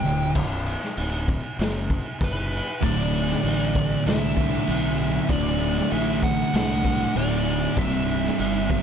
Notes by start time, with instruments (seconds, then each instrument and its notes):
Already playing: lead electric guitar G5
0.05 fingered electric bass D1, distorted electric guitar D2
0.35 fingered electric bass B0, kick, crash
0.66 crash
0.84 snare
0.97 fingered electric bass D1, crash
1.28 kick, crash
1.59 fingered electric bass F#1, snare, crash
1.90 kick, crash
2.21 fingered electric bass F#1, lead electric guitar B4, kick, crash
2.52 crash
2.81 fingered electric bass D1, distorted electric guitar D2 A2 D3, lead electric guitar D5, kick, crash
3.14 crash
3.32 snare
3.44 fingered electric bass A1, crash
3.75 kick, crash
4.06 fingered electric bass C2, distorted electric guitar D2 A2 D3, lead electric guitar E5, snare, crash
4.36 distorted electric guitar D2 A2 D3, kick, crash
4.67 fingered electric bass B1, distorted electric guitar D2 A2, crash
4.71 distorted electric guitar D3
4.98 crash
5.28 fingered electric bass D1, distorted electric guitar D2 A2 D3, kick, crash
5.32 lead electric guitar D5
5.60 crash
5.78 snare
5.91 fingered electric bass A1, lead electric guitar E5, crash
6.23 lead electric guitar F#5, kick, crash
6.52 fingered electric bass C2, distorted electric guitar D2 A2 D3, snare, crash
6.83 distorted electric guitar D2 A2 D3, kick, crash
7.14 fingered electric bass D1, distorted electric guitar D2 A2, lead electric guitar D5, crash
7.18 distorted electric guitar D3
7.46 crash
7.76 fingered electric bass C1, distorted electric guitar C2 G2, lead electric guitar E5, kick, crash
7.81 distorted electric guitar C3
8.08 crash
8.26 snare
8.39 fingered electric bass G1, crash
8.69 kick, crash